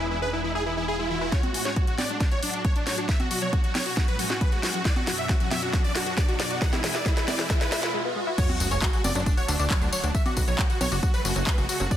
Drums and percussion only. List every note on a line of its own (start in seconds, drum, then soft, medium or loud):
1.32 kick loud
1.32 snare soft
1.32 closed hi-hat medium
1.43 closed hi-hat soft
1.43 high conga medium
1.54 open hi-hat loud
1.65 snare soft
1.76 kick loud
1.76 closed hi-hat medium
1.87 closed hi-hat medium
1.98 snare medium
1.98 open hi-hat loud
1.98 high conga medium
2.09 closed hi-hat medium
2.21 kick loud
2.21 snare medium
2.21 closed hi-hat medium
2.32 closed hi-hat medium
2.43 open hi-hat loud
2.54 closed hi-hat soft
2.65 kick loud
2.65 closed hi-hat medium
2.76 closed hi-hat medium
2.87 snare medium
2.87 open hi-hat loud
2.98 closed hi-hat medium
3.09 kick loud
3.09 snare medium
3.09 closed hi-hat medium
3.20 closed hi-hat medium
3.20 high conga medium
3.31 open hi-hat loud
3.42 closed hi-hat medium
3.53 kick loud
3.53 closed hi-hat medium
3.64 closed hi-hat medium
3.75 snare medium
3.75 open hi-hat loud
3.75 high conga medium
3.86 open hi-hat medium
3.97 kick loud
3.97 snare medium
4.08 closed hi-hat medium
4.19 open hi-hat loud
4.30 snare medium
4.41 kick loud
4.41 closed hi-hat medium
4.52 closed hi-hat medium
4.63 snare medium
4.63 open hi-hat loud
4.74 closed hi-hat soft
4.85 kick loud
4.85 snare medium
4.85 closed hi-hat medium
4.96 closed hi-hat soft
4.96 high conga medium
5.07 snare medium
5.07 open hi-hat loud
5.18 closed hi-hat soft
5.29 kick loud
5.29 snare medium
5.29 closed hi-hat medium
5.40 closed hi-hat soft
5.51 snare medium
5.51 open hi-hat loud
5.51 high conga medium
5.62 closed hi-hat soft
5.73 kick loud
5.73 snare medium
5.73 closed hi-hat medium
5.84 closed hi-hat medium
5.95 snare medium
5.95 open hi-hat loud
6.06 closed hi-hat medium
6.17 kick loud
6.17 snare medium
6.17 closed hi-hat medium
6.29 closed hi-hat medium
6.40 snare medium
6.40 open hi-hat loud
6.51 closed hi-hat soft
6.62 kick loud
6.62 snare medium
6.62 closed hi-hat medium
6.73 snare medium
6.73 closed hi-hat soft
6.73 high conga medium
6.84 snare loud
6.84 open hi-hat loud
6.95 snare medium
7.06 kick loud
7.06 snare loud
7.06 closed hi-hat medium
7.17 snare medium
7.17 closed hi-hat medium
7.28 snare medium
7.28 open hi-hat loud
7.28 high conga medium
7.39 snare medium
7.39 open hi-hat medium
7.50 kick loud
7.50 snare loud
7.50 closed hi-hat medium
7.61 snare medium
7.61 closed hi-hat soft
7.72 snare loud
7.72 open hi-hat loud
7.83 snare medium
7.83 closed hi-hat medium
8.38 kick loud
8.38 closed hi-hat medium
8.38 crash loud
8.38 tambourine soft
8.49 closed hi-hat medium
8.49 tambourine soft
8.49 high conga medium
8.60 open hi-hat loud
8.60 tambourine medium
8.71 closed hi-hat medium
8.71 tambourine soft
8.82 kick loud
8.82 clap loud
8.82 closed hi-hat medium
8.82 tambourine soft
8.93 closed hi-hat medium
8.93 tambourine soft
9.04 open hi-hat loud
9.04 tambourine medium
9.04 high conga medium
9.15 closed hi-hat medium
9.15 tambourine soft
9.26 kick loud
9.26 closed hi-hat medium
9.26 tambourine soft
9.37 closed hi-hat medium
9.37 tambourine soft
9.48 open hi-hat loud
9.48 tambourine medium
9.59 closed hi-hat medium
9.59 tambourine soft
9.70 kick loud
9.70 clap loud
9.70 closed hi-hat medium
9.70 tambourine soft
9.82 closed hi-hat medium
9.82 tambourine soft
9.93 open hi-hat loud
9.93 tambourine medium
10.04 closed hi-hat medium
10.04 tambourine soft
10.15 kick loud
10.15 closed hi-hat medium
10.15 tambourine soft
10.26 closed hi-hat medium
10.26 tambourine soft
10.26 high conga medium
10.37 kick medium
10.37 open hi-hat loud
10.37 tambourine medium
10.48 closed hi-hat medium
10.48 tambourine soft
10.59 kick loud
10.59 clap loud
10.59 closed hi-hat medium
10.59 tambourine soft
10.70 closed hi-hat medium
10.70 tambourine soft
10.81 open hi-hat loud
10.81 tambourine medium
10.81 high conga medium
10.92 open hi-hat medium
10.92 tambourine soft
11.03 kick loud
11.03 closed hi-hat medium
11.03 tambourine soft
11.14 closed hi-hat medium
11.14 tambourine soft
11.25 open hi-hat loud
11.25 tambourine medium
11.36 closed hi-hat medium
11.36 tambourine soft
11.47 kick loud
11.47 clap loud
11.47 closed hi-hat medium
11.47 tambourine soft
11.58 closed hi-hat medium
11.58 tambourine soft
11.69 open hi-hat loud
11.69 tambourine medium
11.80 closed hi-hat medium
11.80 tambourine soft
11.91 kick loud
11.91 closed hi-hat medium
11.91 tambourine soft